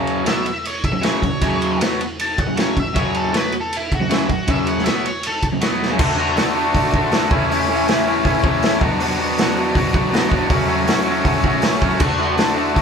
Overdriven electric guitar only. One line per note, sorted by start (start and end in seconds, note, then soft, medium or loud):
0.00 0.26 F#2 medium
0.00 0.24 C#3 loud
0.00 0.24 F#3 loud
0.24 0.44 B2 medium
0.24 0.45 F#3 medium
0.24 0.45 B3 loud
0.92 0.99 F#2 medium
0.92 1.00 C#3 medium
1.01 1.21 F#2 medium
1.01 1.21 C#3 medium
1.01 1.22 F#3 loud
1.23 1.38 F#2 medium
1.23 1.38 C#3 medium
1.41 1.79 F#2 medium
1.41 1.80 C#3 loud
1.41 1.80 F#3 loud
1.80 1.99 B2 medium
1.80 1.99 F#3 medium
1.80 2.00 B3 loud
2.47 2.55 F#2 medium
2.47 2.55 C#3 medium
2.56 2.75 F#2 medium
2.56 2.75 C#3 medium
2.56 2.75 F#3 loud
2.76 2.91 F#2 medium
2.76 2.91 C#3 medium
2.93 3.32 F#2 medium
2.93 3.32 C#3 loud
2.93 3.31 F#3 loud
3.32 3.51 B2 medium
3.32 3.51 F#3 medium
3.32 3.52 B3 medium
4.00 4.07 F#2 medium
4.00 4.09 C#3 medium
4.09 4.27 F#2 medium
4.09 4.27 C#3 loud
4.09 4.28 F#3 loud
4.29 4.44 F#2 medium
4.29 4.44 C#3 medium
4.47 4.85 F#2 medium
4.47 4.85 C#3 medium
4.47 4.85 F#3 loud
4.85 5.04 B2 medium
4.85 5.04 F#3 medium
4.85 5.05 B3 loud
5.52 5.61 F#2 medium
5.52 5.60 C#3 medium
5.60 5.89 B2 medium
5.60 5.89 F#3 medium
5.60 5.89 B3 loud
5.89 5.98 F#2 medium
5.89 5.97 C#3 loud
5.98 6.15 D3 medium
5.98 6.17 A3 medium
5.98 6.17 D4 loud
5.98 6.17 F#4 loud
6.16 6.34 D3 medium
6.16 6.36 A3 medium
6.16 6.35 D4 medium
6.16 6.37 F#4 medium
6.35 6.53 D3 medium
6.35 6.54 A3 medium
6.35 6.55 D4 medium
6.35 6.56 F#4 medium
6.54 6.72 D3 medium
6.54 6.72 A3 medium
6.54 6.74 D4 loud
6.54 6.74 F#4 loud
6.73 6.92 D3 loud
6.73 6.94 A3 loud
6.73 6.94 D4 loud
6.73 6.95 F#4 loud
6.93 7.09 D3 medium
6.93 7.10 A3 medium
6.93 7.11 D4 medium
6.93 7.12 F#4 loud
7.10 7.29 D3 medium
7.10 7.29 A3 medium
7.10 7.30 D4 medium
7.10 7.30 F#4 loud
7.29 7.47 A2 medium
7.29 7.48 E3 loud
7.29 7.49 A3 loud
7.29 7.50 C#4 loud
7.29 7.51 E4 loud
7.49 7.67 A2 loud
7.49 7.67 E3 loud
7.49 7.69 A3 loud
7.49 7.69 C#4 loud
7.49 7.70 E4 loud
7.68 7.85 A2 medium
7.68 7.86 E3 medium
7.68 7.86 A3 medium
7.68 7.87 C#4 medium
7.68 7.88 E4 loud
7.86 8.03 A2 medium
7.86 8.05 E3 medium
7.86 8.06 A3 medium
7.86 8.06 C#4 medium
7.86 8.07 E4 loud
8.05 8.23 A2 medium
8.05 8.23 E3 medium
8.05 8.25 A3 loud
8.05 8.25 C#4 loud
8.05 8.26 E4 loud
8.24 8.42 A2 loud
8.24 8.43 E3 loud
8.24 8.44 A3 loud
8.24 8.45 C#4 loud
8.24 8.45 E4 loud
8.43 8.62 A2 medium
8.43 8.62 E3 loud
8.43 8.64 A3 loud
8.43 8.65 C#4 medium
8.43 8.65 E4 loud
8.63 8.79 A2 medium
8.63 8.81 E3 medium
8.63 8.81 A3 loud
8.63 8.81 C#4 medium
8.63 8.82 E4 medium
8.79 8.98 B2 medium
8.79 9.01 F#3 loud
8.79 9.00 B3 loud
8.79 9.01 D4 loud
8.79 9.03 F#4 loud
8.99 9.17 B2 loud
8.99 9.18 F#3 medium
8.99 9.18 B3 loud
8.99 9.19 D4 loud
8.99 9.21 F#4 loud
9.18 9.37 B2 medium
9.18 9.39 F#3 medium
9.18 9.39 B3 loud
9.18 9.39 D4 loud
9.18 9.42 F#4 loud
9.39 9.54 B2 medium
9.39 9.56 F#3 medium
9.39 9.57 B3 medium
9.39 9.57 D4 loud
9.39 9.59 F#4 medium
9.56 9.73 B2 medium
9.56 9.75 F#3 medium
9.56 9.74 B3 medium
9.56 9.75 D4 loud
9.56 9.77 F#4 loud
9.74 9.90 B2 loud
9.74 9.92 F#3 loud
9.74 9.93 B3 loud
9.74 9.93 D4 loud
9.74 9.95 F#4 loud
9.92 10.09 B2 medium
9.92 10.11 F#3 medium
9.92 10.11 B3 medium
9.92 10.12 D4 medium
9.92 10.13 F#4 loud
10.10 10.28 B2 medium
10.10 10.30 F#3 medium
10.10 10.30 B3 medium
10.10 10.31 D4 medium
10.10 10.32 F#4 medium
10.29 10.48 B2 medium
10.29 10.48 F#3 medium
10.29 10.49 B3 loud
10.29 10.50 D4 medium
10.29 10.51 F#4 loud
10.49 10.66 F#3 loud
10.49 10.68 A3 loud
10.49 10.68 C#4 loud
10.49 10.69 F#4 loud
10.67 10.86 F#3 medium
10.67 10.88 A3 medium
10.67 10.87 C#4 medium
10.67 10.89 F#4 medium
10.86 11.05 F#3 medium
10.86 11.07 A3 medium
10.86 11.06 C#4 medium
10.86 11.08 F#4 loud
11.06 11.22 F#3 medium
11.06 11.25 A3 medium
11.06 11.25 C#4 medium
11.06 11.26 F#4 medium
11.23 11.43 F#3 loud
11.23 11.44 A3 loud
11.23 11.44 C#4 loud
11.23 11.45 F#4 loud
11.44 11.61 F#3 medium
11.44 11.63 A3 medium
11.44 11.63 C#4 medium
11.44 11.64 F#4 loud
11.63 11.80 F#3 medium
11.63 11.82 A3 medium
11.63 11.82 C#4 medium
11.63 11.82 F#4 medium
11.81 11.99 F#3 medium
11.81 12.00 A3 medium
11.81 12.00 C#4 loud
11.81 12.00 F#4 medium
12.00 12.18 D3 medium
12.00 12.20 A3 loud
12.00 12.19 D4 loud
12.00 12.21 F#4 loud
12.19 12.37 D3 medium
12.19 12.39 A3 medium
12.19 12.38 D4 medium
12.19 12.40 F#4 medium
12.38 12.53 D3 medium
12.38 12.55 A3 medium
12.38 12.56 D4 medium
12.38 12.56 F#4 medium
12.55 12.73 D3 medium
12.55 12.74 A3 loud
12.55 12.74 D4 loud
12.55 12.76 F#4 loud
12.74 12.82 D3 loud
12.74 12.82 A3 loud
12.74 12.82 D4 loud
12.74 12.82 F#4 loud